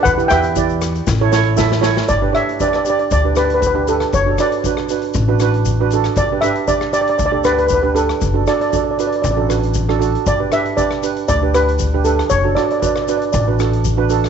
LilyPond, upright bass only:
\new Staff \with { instrumentName = "Upright bass" } { \clef bass \time 4/4 \key g \lydian \tempo 4 = 117 e,8 e,4. a,,2 | g,,8 r4. d,2 | fis,,8 r4. a,,2 | g,,8 r4. d,2 |
fis,,8 r4. a,,2 | g,,8 r4. d,2 | fis,,8 r4. a,,2 | }